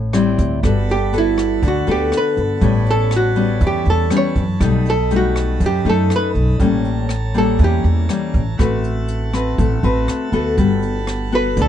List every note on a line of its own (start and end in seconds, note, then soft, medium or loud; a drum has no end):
0.00 0.34 A1 medium
0.00 0.60 A2 medium
0.00 0.11 G4 medium
0.13 0.59 G3 medium
0.13 0.59 C4 medium
0.13 0.60 E4 medium
0.13 cross-stick medium
0.13 closed hi-hat soft
0.38 0.62 D2 medium
0.38 kick medium
0.38 closed hi-hat soft
0.63 1.59 G1 medium
0.63 1.60 G3 medium
0.63 0.95 B3 medium
0.63 0.95 F#4 medium
0.63 2.60 A4 medium
0.63 0.96 A4 medium
0.63 2.60 F#5 medium
0.63 8.55 A5 medium
0.63 6.56 B5 medium
0.63 kick medium
0.63 cross-stick medium
0.63 closed hi-hat soft
0.89 1.14 G4 medium
0.89 closed hi-hat soft
1.13 1.62 B3 medium
1.13 1.63 F#4 medium
1.13 1.63 A4 medium
1.13 closed hi-hat soft
1.18 1.62 E4 medium
1.38 cross-stick medium
1.38 closed hi-hat soft
1.62 1.86 D2 medium
1.62 2.60 D3 medium
1.62 kick medium
1.62 closed hi-hat soft
1.68 1.89 F#4 medium
1.87 2.11 D2 medium
1.87 2.58 B3 medium
1.87 2.58 F#4 medium
1.87 2.58 A4 medium
1.87 closed hi-hat soft
1.91 2.14 G4 medium
2.12 cross-stick medium
2.12 closed hi-hat soft
2.17 2.39 B4 medium
2.37 2.60 G1 medium
2.37 closed hi-hat soft
2.61 3.57 A1 medium
2.61 3.59 A2 medium
2.61 3.32 G3 soft
2.61 3.32 B3 medium
2.61 3.33 C#4 medium
2.61 8.55 A4 medium
2.61 4.59 C#5 medium
2.61 kick medium
2.61 closed hi-hat soft
2.86 closed hi-hat soft
2.91 3.13 A4 medium
3.11 cross-stick medium
3.11 closed hi-hat soft
3.16 3.61 F#4 medium
3.36 4.07 G3 medium
3.36 4.07 B3 soft
3.36 4.08 C#4 medium
3.36 closed hi-hat soft
3.61 3.84 E2 medium
3.61 4.58 E3 medium
3.61 kick medium
3.61 closed hi-hat soft
3.67 3.88 G4 medium
3.85 4.10 E2 medium
3.85 closed hi-hat soft
3.90 4.12 A4 medium
4.10 4.43 G3 medium
4.10 4.43 B3 medium
4.10 4.43 C#4 medium
4.10 cross-stick medium
4.10 closed hi-hat soft
4.17 4.38 C#5 medium
4.36 4.59 F#2 medium
4.36 kick medium
4.36 closed hi-hat soft
4.60 5.56 B1 medium
4.60 5.58 B2 medium
4.60 4.93 G3 medium
4.60 4.93 A3 soft
4.60 4.93 D#4 medium
4.60 6.59 D#5 medium
4.60 kick medium
4.60 cross-stick medium
4.60 closed hi-hat soft
4.85 closed hi-hat soft
4.90 5.12 A4 medium
5.11 5.60 G3 medium
5.11 5.61 A3 medium
5.11 5.61 D#4 medium
5.11 closed hi-hat soft
5.16 5.60 F#4 medium
5.36 cross-stick medium
5.36 closed hi-hat soft
5.60 6.58 F#2 medium
5.60 5.84 F#2 medium
5.60 kick medium
5.60 closed hi-hat soft
5.66 5.88 G4 medium
5.85 6.08 F#2 medium
5.85 6.56 A3 medium
5.85 6.57 D#4 medium
5.85 closed hi-hat soft
5.89 6.12 A4 medium
6.10 cross-stick medium
6.10 closed hi-hat soft
6.16 6.29 B4 medium
6.35 6.58 B1 medium
6.35 closed hi-hat soft
6.60 7.55 A1 medium
6.60 7.57 A2 medium
6.60 7.10 G3 medium
6.60 7.10 A#3 medium
6.60 7.10 C#4 medium
6.60 8.58 C#5 medium
6.60 8.57 A#5 medium
6.60 kick medium
6.60 closed hi-hat soft
6.85 closed hi-hat soft
7.09 cross-stick medium
7.09 closed hi-hat soft
7.34 8.05 G3 medium
7.34 8.05 A#3 medium
7.34 8.06 C#4 medium
7.34 7.61 A4 medium
7.34 closed hi-hat soft
7.59 7.83 E2 medium
7.59 8.56 E3 medium
7.59 kick medium
7.59 closed hi-hat soft
7.64 7.86 G4 medium
7.84 8.07 E2 medium
7.84 closed hi-hat soft
8.09 8.41 G3 medium
8.09 8.42 A#3 medium
8.09 8.42 C#4 medium
8.09 cross-stick medium
8.09 closed hi-hat soft
8.34 8.57 A1 medium
8.34 kick medium
8.34 closed hi-hat soft
8.57 9.55 A1 medium
8.57 9.56 A3 medium
8.57 9.30 C4 soft
8.57 9.30 F#4 medium
8.57 10.55 A4 medium
8.57 9.30 B4 medium
8.57 10.55 E5 medium
8.57 11.68 F#5 medium
8.57 10.55 A5 medium
8.57 kick medium
8.57 cross-stick medium
8.57 closed hi-hat soft
8.84 closed hi-hat soft
9.08 closed hi-hat soft
9.33 9.79 C4 soft
9.33 9.80 F#4 medium
9.33 9.80 B4 medium
9.33 cross-stick medium
9.33 closed hi-hat soft
9.58 9.82 A1 medium
9.58 10.56 A3 medium
9.58 kick medium
9.58 closed hi-hat soft
9.83 10.06 A1 medium
9.83 10.29 C4 medium
9.83 10.29 F#4 medium
9.83 10.30 B4 medium
9.83 closed hi-hat soft
10.08 cross-stick medium
10.08 closed hi-hat soft
10.32 10.56 D2 medium
10.32 11.29 B3 medium
10.32 11.29 F#4 medium
10.32 11.29 A4 medium
10.32 closed hi-hat soft
10.57 11.53 G1 medium
10.57 11.55 G3 medium
10.57 11.68 A4 medium
10.57 11.68 A5 medium
10.57 11.68 B5 medium
10.57 kick medium
10.57 closed hi-hat soft
10.82 closed hi-hat soft
11.07 cross-stick medium
11.07 closed hi-hat soft
11.32 11.68 B3 medium
11.32 11.68 F#4 medium
11.32 11.68 A4 medium
11.32 11.58 B4 medium
11.32 closed hi-hat soft
11.57 11.68 D2 loud
11.57 11.68 D3 medium
11.57 kick medium
11.57 closed hi-hat soft
11.62 11.68 A4 medium